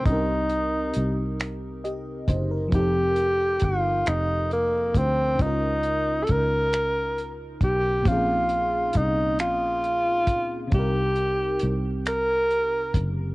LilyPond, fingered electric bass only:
\new Staff \with { instrumentName = "Fingered electric bass" } { \clef bass \time 6/8 \key c \phrygian \tempo 4. = 45 c,4 c,4. ges,,8 | f,,4 g,,8 f,,4 d,8 | des,4 des,4. ces,8 | bes,,4 c,8 bes,,4 des,8 |
c,4 c,4. ges,,8 | }